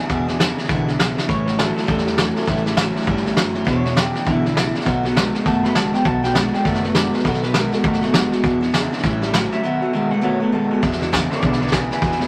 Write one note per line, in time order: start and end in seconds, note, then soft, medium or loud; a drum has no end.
0.00 0.09 E3 medium
0.00 0.36 G#4 medium
0.09 0.26 E2 medium
0.09 0.28 E2 medium
0.09 0.51 E2 medium
0.09 0.28 B2 loud
0.09 0.26 B2 medium
0.09 0.28 E3 medium
0.09 0.28 G#3 medium
0.09 0.27 D4 loud
0.09 0.26 E4 medium
0.09 kick loud
0.09 snare soft
0.27 0.37 E2 medium
0.27 0.38 B2 medium
0.27 0.38 E3 medium
0.27 0.39 G#3 medium
0.27 0.39 D4 medium
0.27 0.39 E4 medium
0.27 snare soft
0.38 0.55 E2 medium
0.38 0.56 C#3 loud
0.38 0.58 E3 medium
0.38 0.58 G#3 medium
0.38 0.58 D4 medium
0.38 snare loud
0.38 hi-hat pedal medium
0.43 0.57 E4 medium
0.56 0.67 E2 medium
0.56 0.68 C#3 medium
0.56 0.70 D4 medium
0.56 0.69 E4 medium
0.56 snare soft
0.61 0.69 E3 soft
0.61 0.69 G#3 medium
0.61 snare soft
0.68 1.11 B1 medium
0.68 0.85 E2 medium
0.68 0.88 E2 medium
0.68 0.88 B2 medium
0.68 0.85 D3 loud
0.68 0.88 E3 medium
0.68 0.88 G#3 loud
0.68 0.88 D4 medium
0.68 0.87 E4 loud
0.68 kick loud
0.68 snare soft
0.87 0.97 E2 medium
0.87 0.98 D3 medium
0.87 1.00 D4 medium
0.87 0.99 E4 medium
0.87 snare soft
0.91 0.98 E3 medium
0.91 1.00 G#3 medium
0.98 1.15 E2 medium
0.98 1.15 C#3 loud
0.98 1.18 E3 medium
0.98 1.18 G#3 medium
0.98 1.17 D4 medium
0.98 snare loud
0.98 hi-hat pedal medium
1.03 1.16 E4 medium
1.17 1.27 E2 medium
1.17 1.27 C#3 medium
1.17 1.28 E3 soft
1.17 1.29 G#3 medium
1.17 1.29 D4 medium
1.17 1.28 E4 medium
1.17 snare medium
1.27 1.70 A1 medium
1.27 1.45 A2 medium
1.27 1.47 A2 medium
1.27 1.45 E3 medium
1.27 1.47 E3 medium
1.27 1.48 G3 medium
1.27 1.48 C#4 medium
1.27 1.46 E4 medium
1.27 1.58 C#5 loud
1.27 kick loud
1.27 snare soft
1.46 1.56 A2 medium
1.46 1.57 E3 medium
1.46 1.59 E4 medium
1.46 snare soft
1.50 1.58 G3 soft
1.50 1.59 C#4 soft
1.58 1.75 A2 medium
1.58 1.77 E3 medium
1.58 1.75 F#3 medium
1.58 1.77 G3 medium
1.58 1.76 C#4 medium
1.58 1.76 A4 medium
1.58 snare loud
1.58 hi-hat pedal medium
1.62 1.74 E4 medium
1.75 1.85 A2 medium
1.75 1.87 F#3 medium
1.75 1.87 G3 soft
1.75 1.88 C#4 soft
1.75 1.88 E4 medium
1.75 1.87 A4 medium
1.75 snare soft
1.83 2.04 A2 medium
1.83 snare soft
1.87 2.30 E2 medium
1.87 2.06 A2 medium
1.87 2.06 E3 medium
1.87 2.04 G3 medium
1.87 2.07 G3 medium
1.87 2.05 C#4 medium
1.87 2.03 E4 medium
1.87 2.75 A4 loud
1.87 kick loud
1.87 snare soft
1.98 snare soft
2.04 2.16 A2 medium
2.04 2.17 G3 medium
2.04 2.18 G3 soft
2.04 2.18 C#4 soft
2.04 2.17 E4 medium
2.04 snare soft
2.17 2.34 A2 medium
2.17 2.36 E3 medium
2.17 2.34 F#3 medium
2.17 2.37 G3 medium
2.17 2.36 C#4 medium
2.17 2.35 E4 medium
2.17 snare loud
2.17 hi-hat pedal medium
2.36 2.46 A2 medium
2.36 2.47 F#3 medium
2.36 2.47 G3 medium
2.36 2.47 C#4 medium
2.36 2.48 E4 medium
2.36 snare soft
2.41 snare soft
2.46 2.90 A1 medium
2.46 2.65 A2 medium
2.46 2.64 A2 medium
2.46 2.66 E3 medium
2.46 2.64 E3 medium
2.46 2.66 G3 loud
2.46 2.65 C#4 medium
2.46 2.62 E4 loud
2.46 kick loud
2.46 snare soft
2.57 snare soft
2.63 2.76 A2 medium
2.63 2.76 E3 medium
2.63 2.75 G3 medium
2.63 2.76 C#4 medium
2.63 2.76 E4 medium
2.63 snare soft
2.74 2.94 A2 medium
2.74 2.94 E3 medium
2.74 2.94 F#3 loud
2.74 2.95 G3 medium
2.74 2.93 C#4 medium
2.74 snare loud
2.74 hi-hat pedal medium
2.93 3.06 A2 medium
2.93 3.06 F#3 medium
2.93 3.05 G3 medium
2.93 3.05 C#4 medium
2.93 3.06 E4 medium
2.93 snare soft
3.02 3.24 A2 medium
3.02 3.25 E3 loud
3.02 snare soft
3.06 3.33 G1 medium
3.06 3.24 A2 medium
3.06 3.25 G3 medium
3.06 3.24 G3 medium
3.06 3.25 C#4 loud
3.06 3.23 E4 loud
3.06 kick loud
3.06 snare soft
3.17 snare soft
3.24 3.35 A2 medium
3.24 3.36 G3 medium
3.24 3.34 G3 medium
3.24 3.35 C#4 medium
3.24 3.36 E4 medium
3.24 snare soft
3.34 3.63 F#1 medium
3.34 3.53 A2 medium
3.34 3.54 E3 medium
3.34 3.54 F#3 medium
3.34 3.54 G3 medium
3.34 3.53 C#4 medium
3.34 3.51 E4 medium
3.34 snare loud
3.34 hi-hat pedal medium
3.52 3.66 A2 medium
3.52 3.66 F#3 medium
3.52 3.66 G3 soft
3.52 3.66 C#4 medium
3.52 3.65 E4 medium
3.52 snare soft
3.65 4.08 E1 medium
3.65 3.84 E2 medium
3.65 3.83 E2 medium
3.65 3.84 B2 medium
3.65 3.83 B2 medium
3.65 3.85 E3 medium
3.65 3.84 G#3 medium
3.65 3.83 D4 medium
3.65 3.81 E4 medium
3.65 3.96 C#5 loud
3.65 kick loud
3.65 snare soft
3.83 3.95 E2 medium
3.83 3.96 B2 medium
3.83 3.92 E3 soft
3.83 3.94 G#3 soft
3.83 3.94 D4 soft
3.83 3.96 E4 medium
3.83 snare soft
3.93 4.13 E2 medium
3.93 4.14 C#3 medium
3.93 4.14 E3 medium
3.93 4.14 G#3 medium
3.93 4.14 D4 medium
3.93 snare loud
3.93 hi-hat pedal medium
3.98 4.13 G4 medium
4.13 4.25 E2 medium
4.13 4.26 C#3 medium
4.13 4.24 E3 soft
4.13 4.25 G#3 soft
4.13 4.26 D4 medium
4.13 4.26 E4 medium
4.13 4.26 G4 loud
4.13 snare soft
4.25 4.68 B1 medium
4.25 4.44 E2 medium
4.25 4.43 E2 medium
4.25 4.44 B2 medium
4.25 4.43 D3 medium
4.25 4.44 E3 medium
4.25 4.45 G#3 medium
4.25 4.44 D4 medium
4.25 4.43 E4 medium
4.25 4.85 E4 loud
4.25 kick loud
4.25 snare soft
4.44 4.54 E2 medium
4.44 4.55 D3 medium
4.44 4.53 E3 soft
4.44 4.55 G#3 soft
4.44 4.56 D4 soft
4.44 4.56 E4 medium
4.44 snare soft
4.55 4.73 E2 medium
4.55 4.73 C#3 medium
4.55 4.74 E3 medium
4.55 4.75 G#3 medium
4.55 4.74 D4 medium
4.55 4.73 E4 medium
4.55 snare loud
4.55 hi-hat pedal medium
4.74 4.85 E2 medium
4.74 4.85 C#3 loud
4.74 4.85 E3 soft
4.74 4.86 G#3 medium
4.74 4.86 D4 medium
4.74 4.86 E4 medium
4.74 snare soft
4.81 snare soft
4.85 5.28 B1 medium
4.85 5.04 B2 medium
4.85 5.03 B2 medium
4.85 5.04 D#3 medium
4.85 5.03 F#3 medium
4.85 5.05 A3 medium
4.85 5.04 B3 medium
4.85 5.02 F#4 medium
4.85 kick loud
4.85 snare soft
5.03 5.14 B2 medium
5.03 5.15 F#3 medium
5.03 5.15 A3 medium
5.03 5.16 B3 medium
5.03 5.15 F#4 medium
5.03 snare soft
5.15 5.33 B2 medium
5.15 5.34 D#3 medium
5.15 5.33 G#3 loud
5.15 5.35 A3 medium
5.15 5.35 B3 medium
5.15 5.33 F#4 medium
5.15 snare loud
5.15 hi-hat pedal medium
5.34 5.45 B2 medium
5.34 5.45 G#3 medium
5.34 5.45 A3 soft
5.34 5.45 B3 medium
5.34 5.46 F#4 medium
5.34 snare soft
5.44 5.88 F#1 medium
5.44 5.64 B2 medium
5.44 5.63 B2 medium
5.44 5.64 D#3 medium
5.44 5.64 A3 medium
5.44 5.63 A3 medium
5.44 5.64 B3 medium
5.44 5.62 F#4 medium
5.44 5.64 A5 medium
5.44 kick loud
5.44 snare soft
5.63 5.74 B2 medium
5.63 5.75 A3 medium
5.63 5.74 A3 soft
5.63 5.76 B3 soft
5.63 5.75 F#4 medium
5.63 5.75 B5 medium
5.63 snare soft
5.74 5.92 B2 medium
5.74 5.93 D#3 medium
5.74 5.92 G#3 medium
5.74 5.94 A3 medium
5.74 5.93 B3 medium
5.74 5.92 F#4 medium
5.74 5.94 A5 medium
5.74 snare loud
5.74 hi-hat pedal medium
5.93 6.04 B2 medium
5.93 6.05 G#3 medium
5.93 6.04 A3 soft
5.93 6.05 B3 soft
5.93 6.05 F#4 medium
5.93 6.05 G5 medium
5.93 snare soft
6.04 6.47 B1 medium
6.04 6.23 B2 medium
6.04 6.22 B2 medium
6.04 6.23 D#3 medium
6.04 6.22 F#3 medium
6.04 6.24 A3 medium
6.04 6.23 B3 medium
6.04 6.21 F#4 loud
6.04 6.23 A5 medium
6.04 kick loud
6.04 snare soft
6.23 6.34 B2 medium
6.23 6.34 F#3 medium
6.23 6.36 A3 soft
6.23 6.36 B3 soft
6.23 6.35 F#4 medium
6.23 6.35 G5 medium
6.23 snare soft
6.33 6.52 B2 medium
6.33 6.54 D#3 medium
6.33 6.52 G#3 loud
6.33 6.55 A3 medium
6.33 6.52 D5 medium
6.33 snare loud
6.33 hi-hat pedal medium
6.38 6.55 B3 medium
6.38 6.53 F#4 medium
6.54 6.64 B2 medium
6.54 6.64 G#3 medium
6.54 6.65 A3 soft
6.54 6.66 B3 medium
6.54 6.66 F#4 medium
6.54 6.65 G5 medium
6.54 snare soft
6.63 7.07 F#1 medium
6.63 6.82 B2 medium
6.63 6.84 B2 medium
6.63 6.84 D#3 medium
6.63 6.82 A3 loud
6.63 6.84 A3 medium
6.63 6.85 B3 medium
6.63 6.82 D5 medium
6.63 kick loud
6.63 snare soft
6.67 6.83 F#4 medium
6.74 snare soft
6.83 6.94 B2 medium
6.83 6.95 A3 medium
6.83 6.96 B3 medium
6.83 6.96 F#4 medium
6.83 6.95 B4 medium
6.83 snare soft
6.88 6.96 A3 medium
6.95 7.12 B2 medium
6.95 7.14 D#3 medium
6.95 7.12 G#3 loud
6.95 7.14 A3 medium
6.95 7.13 B3 medium
6.95 7.12 F#4 medium
6.95 7.13 D5 medium
6.95 snare loud
6.95 hi-hat pedal medium
7.13 7.24 B2 medium
7.13 7.24 G#3 medium
7.13 7.25 A3 soft
7.13 7.26 B3 soft
7.13 7.25 F#4 medium
7.13 7.25 B4 medium
7.13 snare soft
7.19 snare soft
7.25 7.67 B1 medium
7.25 7.43 B2 medium
7.25 7.42 B2 medium
7.25 7.44 D#3 medium
7.25 7.42 F#3 medium
7.25 7.44 A3 medium
7.25 7.44 B3 medium
7.25 7.41 F#4 medium
7.25 7.44 A4 medium
7.25 kick loud
7.25 snare soft
7.34 snare soft
7.43 7.54 B2 medium
7.43 7.54 F#3 medium
7.43 7.54 A3 soft
7.43 7.56 B3 soft
7.43 7.54 F#4 medium
7.43 7.55 B4 medium
7.43 snare soft
7.54 7.71 B2 medium
7.54 7.73 D#3 medium
7.54 7.72 G#3 loud
7.54 7.73 A3 medium
7.54 7.73 B3 medium
7.54 7.72 A#4 medium
7.54 snare loud
7.54 hi-hat pedal medium
7.58 7.71 F#4 medium
7.72 7.84 B2 medium
7.72 7.84 G#3 medium
7.72 7.83 A3 soft
7.72 7.84 B3 soft
7.72 7.84 F#4 medium
7.72 7.83 A4 loud
7.72 snare soft
7.83 8.26 F#1 medium
7.83 8.03 B2 medium
7.83 8.01 B2 medium
7.83 8.03 D#3 medium
7.83 8.03 A3 medium
7.83 8.02 A3 medium
7.83 8.03 B3 medium
7.83 8.01 F#4 medium
7.83 8.01 G4 medium
7.83 kick loud
7.83 snare soft
7.93 snare soft
8.02 8.13 B2 medium
8.02 8.14 A3 medium
8.02 8.14 B3 medium
8.02 8.14 F#4 medium
8.02 8.12 A4 medium
8.02 snare soft
8.06 8.13 A3 soft
8.12 8.31 B2 medium
8.12 8.32 D#3 medium
8.12 8.31 G#3 medium
8.12 8.33 A3 medium
8.12 8.33 B3 medium
8.12 8.56 F#4 medium
8.12 snare loud
8.12 hi-hat pedal medium
8.17 8.31 F#4 medium
8.32 8.43 B2 medium
8.32 8.43 G#3 medium
8.32 8.45 A3 soft
8.32 8.45 B3 medium
8.32 8.44 F#4 medium
8.32 snare soft
8.43 8.62 E2 medium
8.43 8.60 E2 medium
8.43 8.86 E2 medium
8.43 8.62 B2 medium
8.43 8.61 B2 medium
8.43 8.63 E3 medium
8.43 8.62 G#3 medium
8.43 8.61 D4 medium
8.43 8.59 E4 medium
8.43 kick loud
8.43 snare soft
8.61 8.73 E2 medium
8.61 8.73 B2 medium
8.61 8.71 E3 soft
8.61 8.73 G#3 medium
8.61 8.74 D4 medium
8.61 8.73 E4 medium
8.61 snare soft
8.73 8.90 E2 medium
8.73 8.91 C#3 loud
8.73 8.92 E3 medium
8.73 8.92 G#3 medium
8.73 8.91 D4 medium
8.73 8.89 E4 medium
8.73 snare loud
8.73 hi-hat pedal medium
8.90 9.03 E2 medium
8.90 9.03 C#3 medium
8.90 9.02 E3 medium
8.90 9.04 G#3 medium
8.90 9.04 D4 medium
8.90 9.03 E4 medium
8.90 snare soft
8.98 snare soft
9.03 9.45 A1 loud
9.03 9.22 A2 loud
9.03 9.20 A2 medium
9.03 9.22 E3 loud
9.03 9.21 E3 medium
9.03 9.22 G3 medium
9.03 9.22 C#4 medium
9.03 9.20 E4 loud
9.03 kick loud
9.03 snare soft
9.21 9.32 A2 medium
9.21 9.33 G3 medium
9.21 9.34 G3 medium
9.21 9.34 C#4 medium
9.21 9.33 E4 medium
9.21 snare soft
9.33 9.50 A2 medium
9.33 9.52 E3 medium
9.33 9.50 F#3 loud
9.33 9.53 G3 medium
9.33 9.53 C#4 medium
9.33 snare loud
9.33 hi-hat pedal medium
9.37 9.51 E4 medium
9.51 9.62 A2 medium
9.51 9.62 F#3 medium
9.51 9.64 C#4 soft
9.51 9.64 E4 medium
9.51 10.10 E5 medium
9.51 snare soft
9.55 9.65 G3 soft
9.63 9.80 B2 medium
9.63 9.82 B2 medium
9.63 9.82 D#3 medium
9.63 9.80 F#3 medium
9.63 9.83 A3 medium
9.63 9.82 B3 medium
9.63 9.81 F#4 loud
9.81 9.92 B2 medium
9.81 9.92 F#3 medium
9.81 9.94 B3 medium
9.81 9.94 F#4 medium
9.85 9.94 A3 soft
9.93 10.10 B2 medium
9.93 10.12 D#3 medium
9.93 10.10 G#3 loud
9.93 10.12 A3 medium
9.93 10.12 B3 medium
9.93 10.10 F#4 medium
10.11 10.22 B2 medium
10.11 10.22 G#3 medium
10.11 10.21 A3 soft
10.11 10.22 B3 medium
10.11 10.23 F#4 medium
10.11 10.23 F#5 medium
10.21 10.41 B2 medium
10.21 10.40 B2 medium
10.21 10.41 D#3 medium
10.21 10.41 A3 medium
10.21 10.40 A3 medium
10.21 10.41 B3 medium
10.21 10.39 F#4 medium
10.21 10.43 C#5 medium
10.40 10.52 B2 medium
10.40 10.52 A3 medium
10.40 10.52 A3 soft
10.40 10.53 B3 medium
10.40 10.52 F#4 medium
10.40 10.53 B4 medium
10.52 10.69 B2 medium
10.52 10.71 D#3 medium
10.52 10.70 G#3 medium
10.52 10.71 A3 medium
10.52 10.72 B3 medium
10.52 10.70 F#4 medium
10.52 10.82 A4 medium
10.71 10.81 B2 medium
10.71 10.82 G#3 medium
10.71 10.83 A3 soft
10.71 10.84 B3 medium
10.71 10.82 F#4 soft
10.82 10.99 E2 medium
10.82 11.01 E2 medium
10.82 11.25 E2 medium
10.82 10.99 B2 medium
10.82 11.01 B2 medium
10.82 11.01 E3 medium
10.82 11.02 G#3 medium
10.82 11.01 D4 medium
10.82 11.00 E4 medium
10.82 kick loud
10.82 snare soft
10.92 snare soft
11.01 11.11 E2 medium
11.01 11.11 B2 medium
11.01 11.11 E3 soft
11.01 11.12 G#3 medium
11.01 11.13 D4 medium
11.01 11.12 E4 medium
11.01 snare soft
11.12 11.29 E2 medium
11.12 11.29 C#3 medium
11.12 11.31 E3 medium
11.12 11.31 G#3 medium
11.12 11.30 D4 medium
11.12 11.29 E4 medium
11.12 kick medium
11.12 snare loud
11.12 hi-hat pedal medium
11.30 11.40 E2 medium
11.30 11.41 C#3 medium
11.30 11.42 E3 soft
11.30 11.42 G#3 medium
11.30 11.43 D4 medium
11.30 11.42 E4 medium
11.30 11.42 B4 medium
11.30 11.42 D5 loud
11.30 snare soft
11.42 11.84 B1 medium
11.42 11.58 E2 medium
11.42 11.61 E2 medium
11.42 11.61 B2 medium
11.42 11.59 D3 loud
11.42 11.61 E3 medium
11.42 11.61 G#3 medium
11.42 11.59 D4 medium
11.42 11.58 E4 medium
11.42 11.60 B4 medium
11.42 11.61 D5 medium
11.42 kick loud
11.42 snare soft
11.53 snare soft
11.59 11.71 E2 medium
11.59 11.71 D3 medium
11.59 11.71 E3 soft
11.59 11.72 G#3 soft
11.59 11.72 D4 medium
11.59 11.72 E4 medium
11.59 11.74 B4 medium
11.59 11.75 D5 medium
11.59 snare soft
11.67 snare soft
11.72 11.89 E2 medium
11.72 11.89 C#3 loud
11.72 11.90 E3 medium
11.72 11.91 G#3 medium
11.72 11.90 D4 medium
11.72 11.89 E4 medium
11.72 11.90 G#4 medium
11.72 11.91 B4 medium
11.72 kick medium
11.72 snare loud
11.72 hi-hat pedal medium
11.90 12.01 E2 medium
11.90 12.01 C#3 medium
11.90 12.02 E3 soft
11.90 12.02 G#3 soft
11.90 12.02 D4 medium
11.90 12.02 E4 medium
11.90 12.01 G#4 medium
11.90 12.01 B4 medium
11.90 snare soft
12.02 12.27 E2 medium
12.02 12.20 E2 medium
12.02 12.19 E2 medium
12.02 12.20 B2 medium
12.02 12.19 B2 medium
12.02 12.21 E3 medium
12.02 12.21 G#3 medium
12.02 12.20 D4 medium
12.02 12.18 E4 medium
12.02 12.19 G#4 medium
12.02 12.18 B4 medium
12.02 kick loud
12.02 snare soft
12.12 snare soft
12.19 12.27 E2 medium
12.19 12.27 B2 medium
12.19 12.27 E3 soft
12.19 12.27 G#3 medium
12.19 12.27 D4 soft
12.19 12.27 E4 medium
12.19 12.27 B4 loud
12.19 snare soft